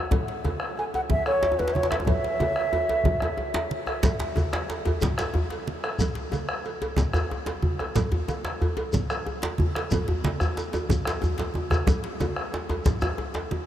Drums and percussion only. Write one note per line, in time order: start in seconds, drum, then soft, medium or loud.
0.11 bombo low medium
0.11 cowbell medium
0.11 djembe slap soft
0.11 djembe tone medium
0.11 djembe bass medium
0.11 low conga medium
0.28 djembe slap soft
0.45 bombo rim soft
0.45 cowbell soft
0.45 djembe tone medium
0.45 high conga medium
0.60 bombo rim medium
0.77 bombo rim soft
0.77 cowbell soft
0.77 djembe slap soft
0.77 high conga soft
0.94 cowbell soft
0.94 djembe slap soft
0.94 djembe tone soft
1.10 bombo low medium
1.10 high conga medium
1.10 low conga medium
1.10 djembe bass medium
1.26 bombo rim medium
1.26 cowbell soft
1.26 djembe slap soft
1.42 bombo rim soft
1.42 djembe slap medium
1.42 djembe tone medium
1.52 djembe tone medium
1.59 cowbell soft
1.59 djembe slap soft
1.59 djembe tone medium
1.68 djembe slap medium
1.75 djembe slap soft
1.75 high conga medium
1.75 djembe tone medium
1.83 djembe slap medium
1.91 bombo rim medium
1.91 cowbell soft
1.91 djembe slap medium
1.91 djembe tone medium
2.00 djembe tone medium
2.06 bombo low medium
2.06 cowbell medium
2.06 djembe tone medium
2.06 high conga soft
2.06 low conga medium
2.06 djembe bass medium
2.24 djembe slap soft
2.24 high conga soft
2.39 bombo rim soft
2.39 cowbell soft
2.39 djembe tone loud
2.39 djembe tone medium
2.39 high conga medium
2.56 bombo rim medium
2.73 cowbell soft
2.73 djembe tone medium
2.88 bombo rim soft
2.88 cowbell soft
2.88 djembe slap medium
2.88 high conga soft
2.88 djembe tone soft
3.04 bombo low medium
3.04 high conga medium
3.04 djembe tone medium
3.04 low conga medium
3.04 djembe bass medium
3.20 bombo rim medium
3.20 cowbell soft
3.20 djembe tone medium
3.37 djembe tone medium
3.54 cowbell soft
3.54 djembe slap soft
3.54 djembe slap loud
3.71 high conga medium
3.87 bombo rim medium
3.87 cowbell soft
3.87 djembe tone medium
4.03 bombo low medium
4.03 cowbell medium
4.03 djembe slap soft
4.03 djembe slap medium
4.03 low conga medium
4.03 djembe bass medium
4.03 shekere medium
4.19 djembe slap medium
4.36 bombo rim soft
4.36 cowbell soft
4.36 djembe tone medium
4.36 high conga medium
4.36 djembe bass medium
4.36 shekere soft
4.53 bombo rim medium
4.53 djembe slap loud
4.69 bombo rim soft
4.69 cowbell soft
4.69 djembe slap soft
4.69 djembe slap medium
4.69 high conga soft
4.85 cowbell medium
4.85 djembe slap medium
4.85 djembe tone medium
4.85 djembe bass medium
5.01 bombo low medium
5.01 djembe slap medium
5.01 high conga medium
5.01 djembe bass medium
5.01 low conga medium
5.01 shekere medium
5.18 bombo rim medium
5.18 cowbell soft
5.18 djembe slap soft
5.18 djembe slap medium
5.18 shekere soft
5.34 bombo rim soft
5.34 djembe tone medium
5.34 djembe bass medium
5.50 cowbell soft
5.50 djembe slap medium
5.66 djembe slap soft
5.66 high conga medium
5.84 bombo rim medium
5.84 cowbell soft
5.99 bombo low medium
5.99 cowbell medium
5.99 djembe slap soft
5.99 djembe bass medium
5.99 low conga medium
5.99 shekere medium
6.15 djembe slap medium
6.32 bombo rim soft
6.32 cowbell soft
6.32 djembe tone medium
6.32 high conga medium
6.32 shekere soft
6.49 bombo rim medium
6.65 bombo rim soft
6.65 cowbell soft
6.65 djembe slap soft
6.65 high conga soft
6.82 cowbell medium
6.82 djembe slap medium
6.82 djembe tone medium
6.96 bombo low medium
6.96 djembe slap medium
6.96 high conga medium
6.96 low conga medium
6.96 djembe bass medium
6.96 shekere soft
7.13 bombo rim medium
7.13 cowbell medium
7.13 djembe slap soft
7.13 djembe bass medium
7.13 shekere soft
7.30 bombo rim soft
7.30 djembe tone medium
7.46 cowbell soft
7.46 djembe slap medium
7.62 djembe slap soft
7.62 high conga medium
7.62 djembe bass medium
7.79 bombo rim medium
7.79 cowbell medium
7.79 djembe tone medium
7.96 bombo low medium
7.96 cowbell medium
7.96 djembe slap soft
7.96 djembe slap medium
7.96 low conga medium
7.96 djembe bass medium
7.96 shekere medium
8.12 djembe slap medium
8.12 djembe bass medium
8.28 bombo rim soft
8.28 cowbell medium
8.28 djembe tone medium
8.28 high conga medium
8.28 shekere soft
8.45 bombo rim medium
8.45 djembe slap medium
8.61 bombo rim soft
8.61 cowbell medium
8.61 djembe slap soft
8.61 high conga soft
8.61 djembe bass medium
8.77 cowbell medium
8.77 djembe slap medium
8.77 djembe tone medium
8.93 bombo low medium
8.93 high conga medium
8.93 djembe bass medium
8.93 low conga medium
8.93 shekere medium
9.10 bombo rim medium
9.10 cowbell medium
9.10 djembe slap soft
9.10 shekere soft
9.26 bombo rim soft
9.26 djembe tone medium
9.42 cowbell medium
9.42 djembe slap medium
9.42 djembe slap loud
9.58 djembe slap soft
9.58 high conga medium
9.58 djembe bass medium
9.75 bombo rim medium
9.75 cowbell medium
9.75 djembe slap medium
9.91 bombo low medium
9.91 cowbell medium
9.91 djembe slap soft
9.91 djembe tone medium
9.91 djembe bass medium
9.91 low conga medium
9.91 shekere medium
10.08 djembe slap medium
10.08 djembe bass medium
10.24 cowbell soft
10.24 djembe slap medium
10.24 djembe tone medium
10.24 high conga medium
10.40 bombo rim medium
10.40 high conga soft
10.40 djembe bass medium
10.40 shekere soft
10.57 cowbell soft
10.57 djembe slap medium
10.57 shekere soft
10.73 cowbell medium
10.73 djembe slap medium
10.73 djembe tone medium
10.73 shekere soft
10.89 bombo rim soft
10.89 bombo low medium
10.89 high conga medium
10.89 djembe bass medium
10.89 low conga medium
10.89 djembe bass medium
10.89 shekere medium
11.05 bombo rim medium
11.05 cowbell medium
11.05 djembe slap soft
11.07 djembe slap loud
11.07 shekere soft
11.22 djembe slap soft
11.22 djembe tone medium
11.22 low conga soft
11.22 djembe bass medium
11.22 shekere soft
11.38 bombo rim soft
11.38 cowbell soft
11.38 djembe slap medium
11.38 low conga medium
11.39 djembe slap medium
11.54 djembe slap soft
11.54 high conga soft
11.54 djembe tone medium
11.70 bombo rim medium
11.70 cowbell soft
11.70 high conga medium
11.70 djembe tone medium
11.70 djembe bass medium
11.70 shekere soft
11.87 bombo low loud
11.87 cowbell medium
11.87 djembe slap soft
11.87 djembe bass medium
11.87 low conga medium
11.87 shekere medium
12.04 djembe slap medium
12.20 bombo rim soft
12.20 cowbell soft
12.20 djembe tone medium
12.20 high conga medium
12.20 djembe tone loud
12.20 shekere soft
12.36 bombo rim medium
12.52 bombo rim soft
12.52 cowbell soft
12.52 djembe slap soft
12.52 djembe slap medium
12.52 high conga soft
12.69 cowbell medium
12.69 djembe slap medium
12.69 djembe tone medium
12.85 bombo low medium
12.85 djembe slap medium
12.85 high conga medium
12.85 low conga medium
12.85 djembe bass medium
12.85 shekere medium
13.01 bombo rim medium
13.01 djembe slap soft
13.01 djembe tone medium
13.01 shekere soft
13.18 bombo rim soft
13.18 djembe tone medium
13.34 cowbell medium
13.34 djembe slap medium
13.50 djembe slap soft
13.50 high conga medium
13.50 djembe tone medium